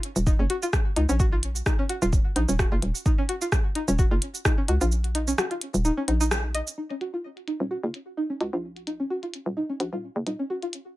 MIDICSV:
0, 0, Header, 1, 4, 480
1, 0, Start_track
1, 0, Key_signature, -6, "minor"
1, 0, Tempo, 465116
1, 1234, Time_signature, 4, 2, 24, 8
1, 11318, End_track
2, 0, Start_track
2, 0, Title_t, "Synth pluck"
2, 0, Program_c, 0, 84
2, 275, Note_on_c, 0, 63, 82
2, 362, Note_off_c, 0, 63, 0
2, 406, Note_on_c, 0, 61, 78
2, 454, Note_off_c, 0, 61, 0
2, 515, Note_on_c, 0, 66, 76
2, 573, Note_off_c, 0, 66, 0
2, 646, Note_on_c, 0, 65, 76
2, 675, Note_off_c, 0, 65, 0
2, 996, Note_on_c, 0, 63, 77
2, 1083, Note_off_c, 0, 63, 0
2, 1126, Note_on_c, 0, 61, 81
2, 1175, Note_off_c, 0, 61, 0
2, 1236, Note_on_c, 0, 66, 82
2, 1294, Note_off_c, 0, 66, 0
2, 1366, Note_on_c, 0, 65, 78
2, 1395, Note_off_c, 0, 65, 0
2, 1716, Note_on_c, 0, 63, 83
2, 1803, Note_off_c, 0, 63, 0
2, 1846, Note_on_c, 0, 61, 78
2, 1895, Note_off_c, 0, 61, 0
2, 1955, Note_on_c, 0, 66, 75
2, 2013, Note_off_c, 0, 66, 0
2, 2085, Note_on_c, 0, 65, 78
2, 2114, Note_off_c, 0, 65, 0
2, 2435, Note_on_c, 0, 63, 74
2, 2522, Note_off_c, 0, 63, 0
2, 2565, Note_on_c, 0, 61, 73
2, 2614, Note_off_c, 0, 61, 0
2, 2674, Note_on_c, 0, 66, 87
2, 2733, Note_off_c, 0, 66, 0
2, 2805, Note_on_c, 0, 65, 78
2, 2834, Note_off_c, 0, 65, 0
2, 3154, Note_on_c, 0, 63, 80
2, 3242, Note_off_c, 0, 63, 0
2, 3285, Note_on_c, 0, 61, 79
2, 3334, Note_off_c, 0, 61, 0
2, 3394, Note_on_c, 0, 66, 76
2, 3453, Note_off_c, 0, 66, 0
2, 3524, Note_on_c, 0, 65, 76
2, 3554, Note_off_c, 0, 65, 0
2, 3874, Note_on_c, 0, 63, 75
2, 3962, Note_off_c, 0, 63, 0
2, 4005, Note_on_c, 0, 61, 76
2, 4054, Note_off_c, 0, 61, 0
2, 4114, Note_on_c, 0, 66, 85
2, 4173, Note_off_c, 0, 66, 0
2, 4245, Note_on_c, 0, 65, 78
2, 4274, Note_off_c, 0, 65, 0
2, 4594, Note_on_c, 0, 63, 83
2, 4682, Note_off_c, 0, 63, 0
2, 4724, Note_on_c, 0, 61, 77
2, 4774, Note_off_c, 0, 61, 0
2, 4835, Note_on_c, 0, 66, 76
2, 4893, Note_off_c, 0, 66, 0
2, 4965, Note_on_c, 0, 65, 81
2, 4994, Note_off_c, 0, 65, 0
2, 5315, Note_on_c, 0, 63, 75
2, 5402, Note_off_c, 0, 63, 0
2, 5445, Note_on_c, 0, 61, 77
2, 5494, Note_off_c, 0, 61, 0
2, 5555, Note_on_c, 0, 66, 86
2, 5613, Note_off_c, 0, 66, 0
2, 5685, Note_on_c, 0, 65, 76
2, 5714, Note_off_c, 0, 65, 0
2, 6034, Note_on_c, 0, 63, 85
2, 6122, Note_off_c, 0, 63, 0
2, 6165, Note_on_c, 0, 61, 77
2, 6214, Note_off_c, 0, 61, 0
2, 6274, Note_on_c, 0, 63, 73
2, 6362, Note_off_c, 0, 63, 0
2, 6404, Note_on_c, 0, 63, 98
2, 6434, Note_off_c, 0, 63, 0
2, 6755, Note_on_c, 0, 75, 78
2, 6813, Note_off_c, 0, 75, 0
2, 6995, Note_on_c, 0, 63, 77
2, 7082, Note_off_c, 0, 63, 0
2, 7125, Note_on_c, 0, 61, 76
2, 7174, Note_off_c, 0, 61, 0
2, 7235, Note_on_c, 0, 66, 75
2, 7293, Note_off_c, 0, 66, 0
2, 7365, Note_on_c, 0, 65, 76
2, 7394, Note_off_c, 0, 65, 0
2, 7714, Note_on_c, 0, 63, 72
2, 7802, Note_off_c, 0, 63, 0
2, 7844, Note_on_c, 0, 61, 74
2, 7894, Note_off_c, 0, 61, 0
2, 7955, Note_on_c, 0, 66, 80
2, 8013, Note_off_c, 0, 66, 0
2, 8085, Note_on_c, 0, 65, 74
2, 8115, Note_off_c, 0, 65, 0
2, 8435, Note_on_c, 0, 63, 81
2, 8522, Note_off_c, 0, 63, 0
2, 8565, Note_on_c, 0, 61, 74
2, 8614, Note_off_c, 0, 61, 0
2, 8675, Note_on_c, 0, 66, 74
2, 8733, Note_off_c, 0, 66, 0
2, 8805, Note_on_c, 0, 65, 76
2, 8834, Note_off_c, 0, 65, 0
2, 9154, Note_on_c, 0, 63, 74
2, 9242, Note_off_c, 0, 63, 0
2, 9285, Note_on_c, 0, 61, 73
2, 9334, Note_off_c, 0, 61, 0
2, 9394, Note_on_c, 0, 66, 82
2, 9453, Note_off_c, 0, 66, 0
2, 9525, Note_on_c, 0, 65, 73
2, 9555, Note_off_c, 0, 65, 0
2, 9874, Note_on_c, 0, 63, 83
2, 9962, Note_off_c, 0, 63, 0
2, 10005, Note_on_c, 0, 61, 75
2, 10054, Note_off_c, 0, 61, 0
2, 10115, Note_on_c, 0, 66, 70
2, 10173, Note_off_c, 0, 66, 0
2, 10245, Note_on_c, 0, 65, 70
2, 10274, Note_off_c, 0, 65, 0
2, 10595, Note_on_c, 0, 63, 73
2, 10683, Note_off_c, 0, 63, 0
2, 10725, Note_on_c, 0, 61, 77
2, 10774, Note_off_c, 0, 61, 0
2, 10836, Note_on_c, 0, 66, 80
2, 10894, Note_off_c, 0, 66, 0
2, 10966, Note_on_c, 0, 65, 76
2, 10995, Note_off_c, 0, 65, 0
2, 11318, End_track
3, 0, Start_track
3, 0, Title_t, "FM bass"
3, 0, Program_c, 1, 39
3, 165, Note_on_c, 1, 27, 99
3, 340, Note_off_c, 1, 27, 0
3, 405, Note_on_c, 1, 30, 96
3, 487, Note_off_c, 1, 30, 0
3, 995, Note_on_c, 1, 37, 83
3, 1092, Note_off_c, 1, 37, 0
3, 1125, Note_on_c, 1, 34, 89
3, 1671, Note_off_c, 1, 34, 0
3, 2086, Note_on_c, 1, 27, 101
3, 2260, Note_off_c, 1, 27, 0
3, 2435, Note_on_c, 1, 34, 91
3, 2532, Note_off_c, 1, 34, 0
3, 2565, Note_on_c, 1, 27, 92
3, 2740, Note_off_c, 1, 27, 0
3, 2805, Note_on_c, 1, 30, 102
3, 2887, Note_off_c, 1, 30, 0
3, 2915, Note_on_c, 1, 27, 91
3, 3012, Note_off_c, 1, 27, 0
3, 4005, Note_on_c, 1, 27, 100
3, 4179, Note_off_c, 1, 27, 0
3, 4245, Note_on_c, 1, 30, 98
3, 4327, Note_off_c, 1, 30, 0
3, 4835, Note_on_c, 1, 37, 82
3, 4932, Note_off_c, 1, 37, 0
3, 4966, Note_on_c, 1, 34, 87
3, 5511, Note_off_c, 1, 34, 0
3, 5925, Note_on_c, 1, 27, 99
3, 6099, Note_off_c, 1, 27, 0
3, 6275, Note_on_c, 1, 34, 82
3, 6833, Note_off_c, 1, 34, 0
3, 7846, Note_on_c, 1, 27, 91
3, 8020, Note_off_c, 1, 27, 0
3, 8086, Note_on_c, 1, 30, 97
3, 8167, Note_off_c, 1, 30, 0
3, 8675, Note_on_c, 1, 37, 82
3, 8772, Note_off_c, 1, 37, 0
3, 8805, Note_on_c, 1, 34, 85
3, 9351, Note_off_c, 1, 34, 0
3, 9765, Note_on_c, 1, 27, 96
3, 9939, Note_off_c, 1, 27, 0
3, 10114, Note_on_c, 1, 34, 86
3, 10212, Note_off_c, 1, 34, 0
3, 10244, Note_on_c, 1, 27, 89
3, 10419, Note_off_c, 1, 27, 0
3, 10485, Note_on_c, 1, 30, 101
3, 10567, Note_off_c, 1, 30, 0
3, 10594, Note_on_c, 1, 27, 86
3, 10692, Note_off_c, 1, 27, 0
3, 11318, End_track
4, 0, Start_track
4, 0, Title_t, "Drums"
4, 35, Note_on_c, 9, 42, 88
4, 138, Note_off_c, 9, 42, 0
4, 165, Note_on_c, 9, 82, 50
4, 268, Note_off_c, 9, 82, 0
4, 274, Note_on_c, 9, 36, 118
4, 275, Note_on_c, 9, 82, 41
4, 378, Note_off_c, 9, 36, 0
4, 378, Note_off_c, 9, 82, 0
4, 515, Note_on_c, 9, 42, 94
4, 618, Note_off_c, 9, 42, 0
4, 645, Note_on_c, 9, 82, 49
4, 748, Note_off_c, 9, 82, 0
4, 754, Note_on_c, 9, 36, 118
4, 755, Note_on_c, 9, 37, 90
4, 755, Note_on_c, 9, 82, 41
4, 858, Note_off_c, 9, 36, 0
4, 858, Note_off_c, 9, 37, 0
4, 858, Note_off_c, 9, 82, 0
4, 995, Note_on_c, 9, 42, 90
4, 1099, Note_off_c, 9, 42, 0
4, 1126, Note_on_c, 9, 82, 47
4, 1229, Note_off_c, 9, 82, 0
4, 1234, Note_on_c, 9, 36, 114
4, 1235, Note_on_c, 9, 82, 42
4, 1338, Note_off_c, 9, 36, 0
4, 1339, Note_off_c, 9, 82, 0
4, 1475, Note_on_c, 9, 42, 88
4, 1579, Note_off_c, 9, 42, 0
4, 1606, Note_on_c, 9, 82, 52
4, 1709, Note_off_c, 9, 82, 0
4, 1714, Note_on_c, 9, 36, 118
4, 1715, Note_on_c, 9, 37, 87
4, 1715, Note_on_c, 9, 82, 42
4, 1818, Note_off_c, 9, 36, 0
4, 1818, Note_off_c, 9, 37, 0
4, 1818, Note_off_c, 9, 82, 0
4, 1955, Note_on_c, 9, 42, 86
4, 2059, Note_off_c, 9, 42, 0
4, 2086, Note_on_c, 9, 82, 52
4, 2189, Note_off_c, 9, 82, 0
4, 2195, Note_on_c, 9, 36, 116
4, 2195, Note_on_c, 9, 82, 42
4, 2298, Note_off_c, 9, 36, 0
4, 2299, Note_off_c, 9, 82, 0
4, 2435, Note_on_c, 9, 42, 88
4, 2538, Note_off_c, 9, 42, 0
4, 2565, Note_on_c, 9, 82, 53
4, 2668, Note_off_c, 9, 82, 0
4, 2674, Note_on_c, 9, 36, 117
4, 2675, Note_on_c, 9, 37, 88
4, 2675, Note_on_c, 9, 82, 42
4, 2778, Note_off_c, 9, 36, 0
4, 2779, Note_off_c, 9, 37, 0
4, 2779, Note_off_c, 9, 82, 0
4, 2915, Note_on_c, 9, 42, 89
4, 3018, Note_off_c, 9, 42, 0
4, 3045, Note_on_c, 9, 82, 49
4, 3148, Note_off_c, 9, 82, 0
4, 3154, Note_on_c, 9, 82, 43
4, 3155, Note_on_c, 9, 36, 111
4, 3258, Note_off_c, 9, 36, 0
4, 3258, Note_off_c, 9, 82, 0
4, 3395, Note_on_c, 9, 42, 86
4, 3498, Note_off_c, 9, 42, 0
4, 3525, Note_on_c, 9, 82, 53
4, 3628, Note_off_c, 9, 82, 0
4, 3634, Note_on_c, 9, 36, 111
4, 3635, Note_on_c, 9, 37, 86
4, 3635, Note_on_c, 9, 82, 42
4, 3738, Note_off_c, 9, 36, 0
4, 3738, Note_off_c, 9, 37, 0
4, 3738, Note_off_c, 9, 82, 0
4, 3874, Note_on_c, 9, 42, 86
4, 3977, Note_off_c, 9, 42, 0
4, 4005, Note_on_c, 9, 82, 54
4, 4108, Note_off_c, 9, 82, 0
4, 4114, Note_on_c, 9, 36, 114
4, 4114, Note_on_c, 9, 82, 45
4, 4217, Note_off_c, 9, 82, 0
4, 4218, Note_off_c, 9, 36, 0
4, 4354, Note_on_c, 9, 42, 86
4, 4457, Note_off_c, 9, 42, 0
4, 4484, Note_on_c, 9, 82, 55
4, 4587, Note_off_c, 9, 82, 0
4, 4594, Note_on_c, 9, 36, 114
4, 4594, Note_on_c, 9, 37, 93
4, 4594, Note_on_c, 9, 82, 42
4, 4697, Note_off_c, 9, 37, 0
4, 4697, Note_off_c, 9, 82, 0
4, 4698, Note_off_c, 9, 36, 0
4, 4834, Note_on_c, 9, 42, 88
4, 4937, Note_off_c, 9, 42, 0
4, 4964, Note_on_c, 9, 82, 53
4, 5068, Note_off_c, 9, 82, 0
4, 5074, Note_on_c, 9, 82, 44
4, 5177, Note_off_c, 9, 82, 0
4, 5204, Note_on_c, 9, 42, 35
4, 5307, Note_off_c, 9, 42, 0
4, 5314, Note_on_c, 9, 42, 90
4, 5417, Note_off_c, 9, 42, 0
4, 5445, Note_on_c, 9, 82, 55
4, 5548, Note_off_c, 9, 82, 0
4, 5555, Note_on_c, 9, 37, 92
4, 5555, Note_on_c, 9, 82, 44
4, 5658, Note_off_c, 9, 37, 0
4, 5658, Note_off_c, 9, 82, 0
4, 5685, Note_on_c, 9, 42, 35
4, 5788, Note_off_c, 9, 42, 0
4, 5795, Note_on_c, 9, 42, 92
4, 5898, Note_off_c, 9, 42, 0
4, 5925, Note_on_c, 9, 82, 53
4, 6028, Note_off_c, 9, 82, 0
4, 6035, Note_on_c, 9, 82, 47
4, 6138, Note_off_c, 9, 82, 0
4, 6275, Note_on_c, 9, 42, 89
4, 6378, Note_off_c, 9, 42, 0
4, 6405, Note_on_c, 9, 82, 56
4, 6509, Note_off_c, 9, 82, 0
4, 6515, Note_on_c, 9, 37, 93
4, 6515, Note_on_c, 9, 82, 45
4, 6618, Note_off_c, 9, 37, 0
4, 6618, Note_off_c, 9, 82, 0
4, 6755, Note_on_c, 9, 42, 88
4, 6858, Note_off_c, 9, 42, 0
4, 6886, Note_on_c, 9, 82, 55
4, 6989, Note_off_c, 9, 82, 0
4, 7126, Note_on_c, 9, 42, 33
4, 7229, Note_off_c, 9, 42, 0
4, 7235, Note_on_c, 9, 42, 85
4, 7338, Note_off_c, 9, 42, 0
4, 7605, Note_on_c, 9, 42, 34
4, 7709, Note_off_c, 9, 42, 0
4, 7715, Note_on_c, 9, 42, 84
4, 7818, Note_off_c, 9, 42, 0
4, 8195, Note_on_c, 9, 42, 88
4, 8298, Note_off_c, 9, 42, 0
4, 8675, Note_on_c, 9, 42, 87
4, 8778, Note_off_c, 9, 42, 0
4, 9045, Note_on_c, 9, 42, 36
4, 9149, Note_off_c, 9, 42, 0
4, 9155, Note_on_c, 9, 42, 90
4, 9258, Note_off_c, 9, 42, 0
4, 9525, Note_on_c, 9, 42, 35
4, 9628, Note_off_c, 9, 42, 0
4, 9634, Note_on_c, 9, 42, 90
4, 9738, Note_off_c, 9, 42, 0
4, 10114, Note_on_c, 9, 42, 92
4, 10218, Note_off_c, 9, 42, 0
4, 10594, Note_on_c, 9, 42, 90
4, 10698, Note_off_c, 9, 42, 0
4, 10965, Note_on_c, 9, 42, 37
4, 11068, Note_off_c, 9, 42, 0
4, 11074, Note_on_c, 9, 42, 92
4, 11177, Note_off_c, 9, 42, 0
4, 11318, End_track
0, 0, End_of_file